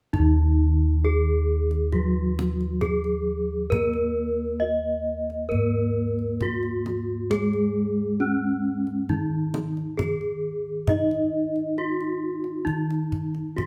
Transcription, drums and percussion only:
0.14 kendang low
1.71 kendang slap
1.92 kendang low
2.39 kendang high
2.60 kendang slap
2.81 kendang high, kendang low
3.04 kendang slap
3.72 kendang high, kendang low
3.93 kendang slap
5.30 kendang slap
5.51 kendang low
6.19 kendang slap
6.41 kendang high, kendang low
6.63 kendang slap
6.86 kendang high
7.31 kendang low
7.53 kendang slap
8.87 kendang slap
9.09 kendang low
9.54 kendang high
9.77 kendang slap
9.99 kendang high, kendang low
10.21 kendang slap
10.87 kendang high, kendang low
11.11 kendang slap
11.56 kendang slap
12.01 kendang slap
12.44 kendang slap
12.67 kendang low
12.90 kendang slap
13.12 kendang low
13.34 kendang slap
13.58 kendang high, kendang low

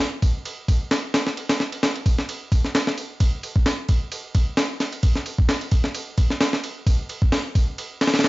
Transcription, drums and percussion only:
0.00 snare, open hi-hat
0.22 kick, ride
0.45 ride
0.68 kick, ride
0.91 snare, ride
1.14 snare, ride
1.27 snare
1.37 ride
1.49 snare, ride
1.60 snare
1.72 ride
1.83 snare, ride
1.96 ride
2.06 kick, ride
2.19 snare
2.29 ride
2.52 kick, ride
2.64 snare
2.75 snare, ride
2.87 snare
2.97 ride
3.20 kick, ride
3.43 ride
3.56 kick
3.66 snare, open hi-hat
3.89 kick, ride
4.12 ride
4.35 kick, ride
4.57 snare, ride
4.80 snare, ride
4.92 ride
5.03 kick, ride
5.16 snare
5.26 ride
5.39 kick
5.49 snare, ride
5.61 ride
5.72 kick, ride
5.84 snare
5.95 ride
6.18 kick, ride
6.30 snare
6.40 snare, ride
6.53 snare
6.64 ride
6.87 kick, ride
7.09 ride
7.22 kick
7.32 snare, open hi-hat
7.55 kick, ride
7.78 ride
8.01 snare, open hi-hat
8.07 snare, open hi-hat
8.14 snare, open hi-hat
8.19 snare, open hi-hat
8.24 snare, ride

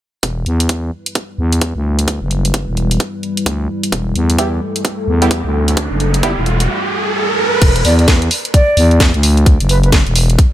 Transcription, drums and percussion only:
0.23 kick, closed hi-hat
0.46 closed hi-hat
0.60 closed hi-hat
0.69 kick, closed hi-hat
1.06 closed hi-hat
1.15 kick, closed hi-hat
1.52 closed hi-hat
1.61 kick, closed hi-hat
1.99 closed hi-hat
2.08 kick, closed hi-hat
2.31 closed hi-hat
2.45 closed hi-hat
2.54 kick, closed hi-hat
2.77 closed hi-hat
2.91 closed hi-hat
3.00 kick, closed hi-hat
3.23 closed hi-hat
3.37 closed hi-hat
3.46 kick, closed hi-hat
3.83 closed hi-hat
3.92 kick, closed hi-hat
4.16 closed hi-hat
4.30 closed hi-hat
4.38 kick, closed hi-hat
4.76 closed hi-hat
4.85 kick, closed hi-hat
5.22 closed hi-hat
5.31 kick, closed hi-hat
5.68 closed hi-hat
5.77 kick, closed hi-hat
6.00 closed hi-hat
6.14 closed hi-hat
6.23 kick, closed hi-hat
6.46 closed hi-hat
6.60 closed hi-hat
7.62 kick, closed hi-hat, crash
7.76 closed hi-hat
7.85 open hi-hat
7.99 closed hi-hat
8.08 kick, snare, closed hi-hat
8.22 closed hi-hat
8.31 open hi-hat
8.45 closed hi-hat
8.54 kick, closed hi-hat
8.77 open hi-hat
8.91 closed hi-hat
9.00 kick, snare, closed hi-hat
9.14 closed hi-hat
9.23 open hi-hat
9.37 closed hi-hat
9.46 kick, closed hi-hat
9.60 closed hi-hat
9.69 open hi-hat
9.83 closed hi-hat
9.92 kick, snare, closed hi-hat
10.07 closed hi-hat
10.16 open hi-hat
10.30 closed hi-hat
10.39 kick, closed hi-hat

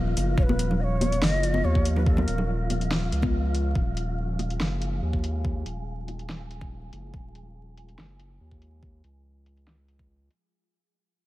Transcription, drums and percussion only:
0.17 closed hi-hat
0.38 kick
0.49 high conga
0.59 closed hi-hat
0.71 low conga
1.01 closed hi-hat, high conga
1.12 closed hi-hat
1.22 snare
1.43 closed hi-hat
1.54 high conga
1.75 kick
1.85 closed hi-hat
1.96 low conga
2.06 kick
2.17 high conga, low conga
2.28 closed hi-hat
2.38 low conga
2.70 closed hi-hat, high conga
2.81 closed hi-hat
2.91 snare
3.12 closed hi-hat
3.22 kick, high conga
3.55 closed hi-hat
3.75 kick
3.97 closed hi-hat
4.39 closed hi-hat
4.50 closed hi-hat
4.60 snare
4.82 closed hi-hat
5.13 kick
5.24 closed hi-hat
5.45 kick
5.66 closed hi-hat
6.08 closed hi-hat
6.19 closed hi-hat
6.29 snare
6.51 closed hi-hat
6.61 kick
6.93 closed hi-hat
7.14 kick
7.35 closed hi-hat
7.77 closed hi-hat
7.89 closed hi-hat
7.98 snare
8.20 closed hi-hat
8.51 kick
8.62 closed hi-hat
8.83 kick
9.04 closed hi-hat
9.46 closed hi-hat
9.57 closed hi-hat
9.67 snare
9.88 closed hi-hat
9.99 kick
10.31 closed hi-hat

